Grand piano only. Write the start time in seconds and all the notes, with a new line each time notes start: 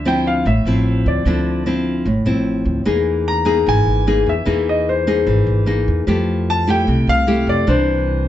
0.08 G5
0.27 F5
0.47 E5
1.08 D5
3.28 A#5
3.69 G#5
4.29 E5
4.69 D#5
4.89 C5
6.50 A5
6.70 G5
7.09 F5
7.49 D5
7.69 C5